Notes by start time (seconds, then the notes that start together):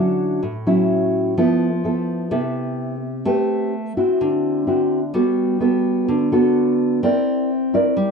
Already playing: D3 F#3 C#4 E4
0.43 A2
0.67 F#3 C#4 E4
1.38 F3 B3 E4 A4
1.84 B3 E4 A4
2.31 C3 B3 E4 A4
3.25 A3 C4 G4 B4
3.97 C4 E4 F#4
4.21 D3
4.67 C4 E4 F#4
5.14 G3 B3 F#4 A4
5.60 B3 F#4 A4
6.08 D3
6.32 B3 F#4 A4
7.03 C4 E4 A#4 D5
7.74 E4 A#4 D5
7.97 G3